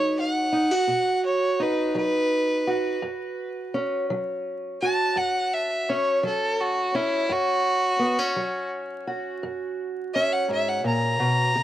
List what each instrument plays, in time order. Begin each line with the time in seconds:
Already playing: steel-string acoustic guitar F#3 D#4 F#4, fiddle C#5
0.20 fiddle F#5
0.52 steel-string acoustic guitar D#4
0.71 steel-string acoustic guitar F#4
0.87 steel-string acoustic guitar B2
1.26 fiddle C#5
1.60 steel-string acoustic guitar D#4, fiddle B4
1.95 steel-string acoustic guitar F#3, fiddle B4
2.67 steel-string acoustic guitar F#4
3.02 steel-string acoustic guitar F#2
3.74 steel-string acoustic guitar C#4
4.10 steel-string acoustic guitar F#3
4.82 steel-string acoustic guitar F#4, fiddle A5
5.16 steel-string acoustic guitar F#2, fiddle F#5
5.54 fiddle E5
5.89 steel-string acoustic guitar C#4, fiddle C#5
6.23 steel-string acoustic guitar F#3, fiddle A4
6.61 fiddle F#4
6.95 steel-string acoustic guitar C#4, fiddle E4
7.29 steel-string acoustic guitar F#2, fiddle F#4
7.99 steel-string acoustic guitar B3
8.18 steel-string acoustic guitar C#4
8.36 steel-string acoustic guitar F#3
9.07 steel-string acoustic guitar F#4
9.43 steel-string acoustic guitar F#2
10.14 steel-string acoustic guitar C#4, fiddle E5
10.33 fiddle F#5
10.48 steel-string acoustic guitar G#2, fiddle E5
10.69 fiddle F#5
10.84 steel-string acoustic guitar A#2, fiddle A#5
11.19 steel-string acoustic guitar B2
11.56 steel-string acoustic guitar C#3